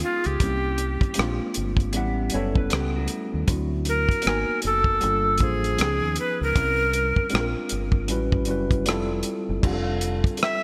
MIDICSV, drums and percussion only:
0, 0, Header, 1, 2, 480
1, 0, Start_track
1, 0, Tempo, 769231
1, 251, Time_signature, 4, 2, 24, 8
1, 6636, End_track
2, 0, Start_track
2, 0, Title_t, "Drums"
2, 0, Note_on_c, 9, 42, 53
2, 60, Note_off_c, 9, 42, 0
2, 149, Note_on_c, 9, 42, 31
2, 212, Note_off_c, 9, 42, 0
2, 250, Note_on_c, 9, 36, 90
2, 250, Note_on_c, 9, 42, 81
2, 313, Note_off_c, 9, 36, 0
2, 313, Note_off_c, 9, 42, 0
2, 486, Note_on_c, 9, 42, 55
2, 548, Note_off_c, 9, 42, 0
2, 630, Note_on_c, 9, 36, 84
2, 644, Note_on_c, 9, 42, 31
2, 693, Note_off_c, 9, 36, 0
2, 706, Note_off_c, 9, 42, 0
2, 711, Note_on_c, 9, 42, 72
2, 745, Note_on_c, 9, 37, 101
2, 774, Note_off_c, 9, 42, 0
2, 807, Note_off_c, 9, 37, 0
2, 962, Note_on_c, 9, 42, 59
2, 1025, Note_off_c, 9, 42, 0
2, 1102, Note_on_c, 9, 36, 88
2, 1122, Note_on_c, 9, 42, 32
2, 1165, Note_off_c, 9, 36, 0
2, 1185, Note_off_c, 9, 42, 0
2, 1203, Note_on_c, 9, 42, 72
2, 1265, Note_off_c, 9, 42, 0
2, 1433, Note_on_c, 9, 42, 57
2, 1495, Note_off_c, 9, 42, 0
2, 1594, Note_on_c, 9, 36, 83
2, 1657, Note_off_c, 9, 36, 0
2, 1686, Note_on_c, 9, 42, 70
2, 1704, Note_on_c, 9, 37, 92
2, 1749, Note_off_c, 9, 42, 0
2, 1767, Note_off_c, 9, 37, 0
2, 1919, Note_on_c, 9, 42, 53
2, 1982, Note_off_c, 9, 42, 0
2, 2169, Note_on_c, 9, 42, 78
2, 2171, Note_on_c, 9, 36, 94
2, 2232, Note_off_c, 9, 42, 0
2, 2233, Note_off_c, 9, 36, 0
2, 2403, Note_on_c, 9, 42, 58
2, 2466, Note_off_c, 9, 42, 0
2, 2550, Note_on_c, 9, 36, 81
2, 2566, Note_on_c, 9, 42, 32
2, 2612, Note_off_c, 9, 36, 0
2, 2628, Note_off_c, 9, 42, 0
2, 2632, Note_on_c, 9, 42, 66
2, 2666, Note_on_c, 9, 37, 100
2, 2695, Note_off_c, 9, 42, 0
2, 2729, Note_off_c, 9, 37, 0
2, 2882, Note_on_c, 9, 42, 57
2, 2944, Note_off_c, 9, 42, 0
2, 3022, Note_on_c, 9, 36, 79
2, 3085, Note_off_c, 9, 36, 0
2, 3125, Note_on_c, 9, 42, 70
2, 3187, Note_off_c, 9, 42, 0
2, 3355, Note_on_c, 9, 42, 54
2, 3372, Note_on_c, 9, 36, 84
2, 3417, Note_off_c, 9, 42, 0
2, 3435, Note_off_c, 9, 36, 0
2, 3520, Note_on_c, 9, 42, 33
2, 3583, Note_off_c, 9, 42, 0
2, 3609, Note_on_c, 9, 42, 68
2, 3627, Note_on_c, 9, 37, 97
2, 3672, Note_off_c, 9, 42, 0
2, 3690, Note_off_c, 9, 37, 0
2, 3841, Note_on_c, 9, 42, 55
2, 3904, Note_off_c, 9, 42, 0
2, 4091, Note_on_c, 9, 36, 99
2, 4092, Note_on_c, 9, 42, 81
2, 4153, Note_off_c, 9, 36, 0
2, 4154, Note_off_c, 9, 42, 0
2, 4327, Note_on_c, 9, 42, 54
2, 4389, Note_off_c, 9, 42, 0
2, 4470, Note_on_c, 9, 36, 80
2, 4533, Note_off_c, 9, 36, 0
2, 4553, Note_on_c, 9, 42, 66
2, 4586, Note_on_c, 9, 37, 104
2, 4615, Note_off_c, 9, 42, 0
2, 4649, Note_off_c, 9, 37, 0
2, 4800, Note_on_c, 9, 42, 60
2, 4863, Note_off_c, 9, 42, 0
2, 4941, Note_on_c, 9, 36, 82
2, 5003, Note_off_c, 9, 36, 0
2, 5043, Note_on_c, 9, 42, 71
2, 5106, Note_off_c, 9, 42, 0
2, 5194, Note_on_c, 9, 36, 81
2, 5256, Note_off_c, 9, 36, 0
2, 5274, Note_on_c, 9, 42, 52
2, 5336, Note_off_c, 9, 42, 0
2, 5433, Note_on_c, 9, 36, 80
2, 5438, Note_on_c, 9, 42, 33
2, 5496, Note_off_c, 9, 36, 0
2, 5500, Note_off_c, 9, 42, 0
2, 5527, Note_on_c, 9, 42, 66
2, 5545, Note_on_c, 9, 37, 98
2, 5589, Note_off_c, 9, 42, 0
2, 5608, Note_off_c, 9, 37, 0
2, 5758, Note_on_c, 9, 42, 57
2, 5821, Note_off_c, 9, 42, 0
2, 6011, Note_on_c, 9, 36, 98
2, 6014, Note_on_c, 9, 49, 76
2, 6073, Note_off_c, 9, 36, 0
2, 6076, Note_off_c, 9, 49, 0
2, 6247, Note_on_c, 9, 42, 55
2, 6309, Note_off_c, 9, 42, 0
2, 6390, Note_on_c, 9, 36, 86
2, 6406, Note_on_c, 9, 42, 31
2, 6452, Note_off_c, 9, 36, 0
2, 6468, Note_off_c, 9, 42, 0
2, 6473, Note_on_c, 9, 42, 65
2, 6507, Note_on_c, 9, 37, 103
2, 6535, Note_off_c, 9, 42, 0
2, 6569, Note_off_c, 9, 37, 0
2, 6636, End_track
0, 0, End_of_file